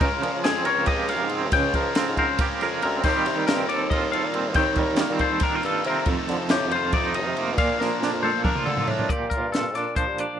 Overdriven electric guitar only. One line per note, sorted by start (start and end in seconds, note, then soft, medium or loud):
0.02 0.44 C#3 loud
0.02 0.25 G#3 loud
0.02 0.24 C#4 loud
0.02 0.23 F4 loud
0.23 0.45 G#3 medium
0.23 0.46 C#4 medium
0.23 0.47 F4 medium
0.45 0.85 C#3 medium
0.45 0.86 G#3 medium
0.45 0.88 C#4 medium
0.45 0.89 F4 loud
0.86 1.29 C#3 loud
0.86 1.10 G#3 medium
0.86 1.09 C#4 medium
0.86 1.08 F4 loud
1.08 1.31 G#3 medium
1.08 1.32 C#4 medium
1.08 1.34 F4 medium
1.31 1.51 C#3 medium
1.31 1.51 G#3 medium
1.31 1.53 C#4 medium
1.31 1.55 F4 medium
1.52 1.94 C#3 medium
1.52 1.76 G#3 medium
1.52 1.75 C#4 medium
1.52 1.74 F4 loud
1.74 1.96 G#3 medium
1.74 1.97 C#4 medium
1.74 1.98 F4 medium
1.95 2.38 C#3 medium
1.95 2.39 G#3 medium
1.95 2.40 C#4 medium
1.95 2.42 F4 medium
2.40 2.81 C#3 loud
2.40 2.63 G#3 medium
2.40 2.62 C#4 loud
2.40 2.61 F4 loud
2.62 2.82 G#3 medium
2.62 2.83 C#4 medium
2.62 2.85 F4 medium
2.82 3.03 C#3 medium
2.82 3.03 G#3 medium
2.82 3.04 C#4 medium
2.82 3.06 F4 medium
3.05 3.46 D#3 medium
3.05 3.28 G3 medium
3.05 3.27 A#3 loud
3.05 3.25 D#4 loud
3.25 3.48 G3 medium
3.25 3.48 A#3 medium
3.25 3.50 D#4 medium
3.47 3.90 D#3 medium
3.47 3.93 G3 medium
3.47 3.93 A#3 medium
3.47 3.94 D#4 medium
3.91 4.32 D#3 medium
3.91 4.15 G3 medium
3.91 4.14 A#3 medium
3.91 4.12 D#4 loud
4.12 4.34 G3 medium
4.12 4.35 A#3 medium
4.12 4.37 D#4 medium
4.33 4.55 D#3 medium
4.33 4.57 G3 medium
4.33 4.58 A#3 medium
4.33 4.59 D#4 medium
4.56 4.96 D#3 medium
4.56 4.79 G3 loud
4.56 4.78 A#3 loud
4.56 4.77 D#4 loud
4.77 4.98 G3 medium
4.77 5.00 A#3 medium
4.77 5.01 D#4 medium
4.97 5.39 D#3 medium
4.97 5.41 G3 medium
4.97 5.43 A#3 medium
4.97 5.43 D#4 medium
5.41 5.83 D#3 loud
5.41 5.65 G3 loud
5.41 5.64 A#3 loud
5.41 5.61 D#4 loud
5.62 5.85 G3 medium
5.62 5.86 A#3 medium
5.62 5.87 D#4 medium
5.85 6.05 D#3 medium
5.85 6.06 G3 medium
5.85 6.09 A#3 medium
5.85 6.07 D#4 medium
6.07 6.50 F2 loud
6.07 6.48 C3 medium
6.07 6.30 D#3 loud
6.07 6.29 A3 loud
6.07 6.27 D#4 medium
6.28 6.49 D#3 medium
6.28 6.50 A3 medium
6.28 6.50 D#4 medium
6.49 6.92 C3 medium
6.49 6.94 D#3 medium
6.49 6.94 A3 medium
6.49 6.94 D#4 medium
6.93 7.36 F2 loud
6.93 7.35 C3 loud
6.93 7.16 D#3 loud
6.93 7.14 A3 loud
6.93 7.13 D#4 loud
7.14 7.36 D#3 medium
7.14 7.37 A3 medium
7.14 7.38 D#4 medium
7.36 7.56 C3 medium
7.36 7.57 D#3 medium
7.36 7.58 A3 medium
7.36 7.58 D#4 medium
7.57 7.99 A#2 medium
7.57 7.79 F3 loud
7.57 7.78 A#3 loud
7.57 7.77 D4 loud
7.78 8.00 F3 medium
7.78 8.01 A#3 medium
7.78 8.02 D4 medium
8.00 8.44 A#2 medium
8.00 8.45 F3 medium
8.00 8.46 A#3 medium
8.00 8.47 D4 medium
8.45 8.85 A#2 medium
8.45 8.69 F3 medium
8.45 8.67 A#3 loud
8.45 8.65 D4 loud
8.67 8.87 F3 medium
8.67 8.88 A#3 medium
8.67 8.89 D4 medium
8.86 9.08 A#2 medium
8.86 9.09 F3 medium
8.86 9.09 A#3 medium
8.90 9.10 D4 medium